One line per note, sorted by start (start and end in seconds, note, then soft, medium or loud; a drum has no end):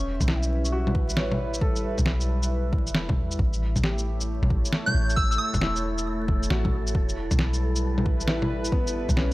0.00 0.19 E1 medium
0.00 3.39 G3 medium
0.00 0.91 C#4 medium
0.00 1.14 C#4 medium
0.00 0.51 A4 medium
0.00 4.65 B4 medium
0.00 9.33 E5 medium
0.09 9.33 E4 medium
0.20 1.18 B1 medium
0.20 kick medium
0.20 low bongo soft
0.20 shaker medium
0.28 1.58 E4 medium
0.28 snare loud
0.43 shaker soft
0.65 shaker medium
0.72 2.02 F#4 medium
0.87 low bongo medium
0.95 kick loud
1.09 shaker medium
1.17 1.96 A1 medium
1.17 2.47 C#5 medium
1.17 snare loud
1.32 low bongo soft
1.54 shaker medium
1.61 2.91 A4 medium
1.61 kick loud
1.76 shaker soft
1.98 2.89 B1 medium
1.98 kick medium
1.98 low bongo soft
1.98 shaker medium
2.06 snare loud
2.21 shaker soft
2.43 shaker medium
2.73 kick loud
2.87 3.18 E1 loud
2.87 shaker medium
2.95 snare loud
3.09 kick loud
3.09 low bongo soft
3.17 3.38 E2 medium
3.31 shaker medium
3.38 4.41 A1 loud
3.38 6.95 A3 medium
3.38 9.33 A4 medium
3.38 kick loud
3.53 shaker soft
3.76 8.21 C#5 medium
3.76 kick medium
3.76 low bongo soft
3.76 shaker medium
3.83 5.13 G4 medium
3.83 snare loud
3.98 shaker soft
4.21 shaker medium
4.42 4.62 A1 medium
4.42 low bongo medium
4.50 kick loud
4.65 shaker medium
4.73 snare loud
4.86 5.10 G6 medium
4.86 low bongo soft
4.94 5.38 A1 medium
5.10 shaker medium
5.16 5.26 E6 medium
5.16 kick loud
5.31 5.36 E6 medium
5.31 shaker soft
5.38 5.75 E6 medium
5.54 6.27 E1 medium
5.54 kick medium
5.54 low bongo soft
5.54 shaker soft
5.62 6.92 E4 medium
5.62 snare loud
5.76 shaker soft
5.98 shaker medium
6.28 6.49 E1 loud
6.28 kick loud
6.43 shaker medium
6.50 6.96 A1 medium
6.50 7.13 F#4 medium
6.50 snare loud
6.65 kick loud
6.65 low bongo soft
6.87 shaker medium
6.95 7.30 E1 medium
6.95 9.33 G3 medium
6.95 kick loud
7.09 shaker soft
7.31 8.29 B1 medium
7.31 9.33 B4 medium
7.31 kick medium
7.31 low bongo medium
7.31 shaker soft
7.39 snare loud
7.54 shaker soft
7.76 shaker medium
7.98 low bongo medium
8.06 kick loud
8.20 shaker medium
8.28 9.07 A1 medium
8.28 9.33 E4 medium
8.28 snare loud
8.42 low bongo medium
8.65 shaker medium
8.72 9.33 B3 medium
8.72 kick loud
8.87 shaker soft
9.09 9.33 B1 medium
9.09 kick medium
9.09 low bongo medium
9.09 shaker medium
9.16 9.33 C#4 medium
9.16 snare loud